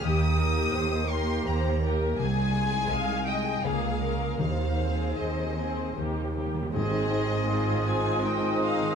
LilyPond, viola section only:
\new Staff \with { instrumentName = "Viola section" } { \time 3/4 \key aes \major \tempo 4 = 81 << { g'8 g'4 g'4 g'8 | r8 aes'4 aes'8 aes'8 aes'8 | r8 aes'4 aes'8 g'8 g'8 | c'2. | } \\ { bes8 bes4 bes4 bes8 | r8 aes4 aes8 bes8 bes8 | r8 c'4 c'8 bes8 bes8 | aes4 c'8 c'4. | } >> }